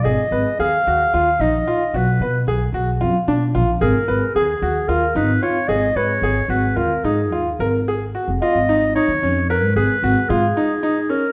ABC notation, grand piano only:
X:1
M:7/8
L:1/8
Q:1/4=112
K:G#dor
V:1 name="Grand piano"
G B G F E D E | F B G F E =D E | G B G F E D E | G B G F E D E |
A G F E D D C | A G F E D D C |]